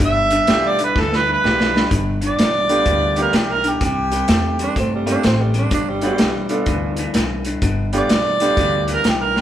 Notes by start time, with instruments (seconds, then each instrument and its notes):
Already playing: grand piano A3 B3 D4 F4 G4
0.00 upright bass G1, clean electric guitar G2 D3, kick, closed hi-hat
0.05 harmonica E5
0.30 clean electric guitar G2 D3, closed hi-hat
0.47 upright bass B1, clean electric guitar G2 E3, grand piano A3 B3 D4 F4 G4, snare, closed hi-hat
0.68 harmonica D5
0.79 clean electric guitar G2 D3, closed hi-hat
0.84 harmonica B4
0.96 upright bass D2, clean electric guitar G2 E3, kick, snare
1.01 harmonica A4
1.13 harmonica B4, snare
1.28 clean electric guitar G2 E3
1.33 harmonica B4
1.44 upright bass B1, clean electric guitar G2 E3, grand piano A3 B3 D4 F4 G4, snare
1.60 snare
1.74 clean electric guitar G2 D3, snare
1.91 upright bass G1, clean electric guitar G2 D3, kick, closed hi-hat
2.21 clean electric guitar G2 D3, closed hi-hat
2.27 harmonica D5
2.39 upright bass B1, clean electric guitar G2 E3, snare, closed hi-hat
2.69 clean electric guitar G2 D3, grand piano A3 B3 D4 F4 G4, closed hi-hat
2.86 upright bass D2, clean electric guitar G2 E3, kick, closed hi-hat
3.16 clean electric guitar G2 E3, grand piano A3 B3 D4 F4 G4, closed hi-hat
3.22 harmonica A#4
3.33 upright bass B1, clean electric guitar G2 E3, snare, closed hi-hat
3.37 harmonica G4
3.53 harmonica A#4
3.64 clean electric guitar G2 D3, closed hi-hat
3.69 harmonica G4
3.81 upright bass C2, clean electric guitar C3 G3, kick, closed hi-hat
3.85 harmonica G4
4.12 clean electric guitar C3 G3, closed hi-hat
4.28 upright bass E2, clean electric guitar C3 A3, snare, closed hi-hat
4.59 clean electric guitar C3 G3, tenor saxophone D4, closed hi-hat
4.76 upright bass G2, clean electric guitar C3 A3, tenor saxophone C4, kick, closed hi-hat
4.95 tenor saxophone G3
5.06 clean electric guitar C3 A3, grand piano A#3 C4 D4 E4 G4, closed hi-hat
5.11 tenor saxophone D4
5.23 upright bass A1, clean electric guitar C3 A3, tenor saxophone C4, snare, closed hi-hat
5.42 tenor saxophone G3
5.54 clean electric guitar C3 G3, closed hi-hat
5.58 tenor saxophone D4
5.71 upright bass G1, clean electric guitar G2 D3, tenor saxophone D4, kick, closed hi-hat
5.89 tenor saxophone G3
6.01 clean electric guitar G2 D3, tenor saxophone G3, grand piano A3 B3 D4 F4 G4, closed hi-hat
6.18 upright bass B1, clean electric guitar G2 E3, snare, closed hi-hat
6.49 clean electric guitar G2 D3, grand piano A3 B3 D4 F4 A4, closed hi-hat
6.66 upright bass D2, clean electric guitar G2 E3, kick, closed hi-hat
6.96 clean electric guitar G2 E3, closed hi-hat
7.14 upright bass B1, clean electric guitar G2 E3, snare, closed hi-hat
7.45 clean electric guitar G2 D3, closed hi-hat
7.62 upright bass G1, clean electric guitar G2 D3, kick, closed hi-hat
7.93 clean electric guitar G2 D3, grand piano A3 B3 D4 F4 G4, closed hi-hat
7.98 harmonica D5
8.09 upright bass B1, clean electric guitar G2 E3, snare, closed hi-hat
8.40 clean electric guitar G2 D3, grand piano A3 B3 D4 F4 G4, closed hi-hat
8.57 upright bass D2, clean electric guitar G2 E3, kick, closed hi-hat
8.88 clean electric guitar G2 E3, closed hi-hat
8.94 harmonica A#4
9.04 upright bass B1, clean electric guitar G2 E3, snare, closed hi-hat
9.09 harmonica G4
9.24 harmonica A#4
9.36 clean electric guitar G2 D3, snare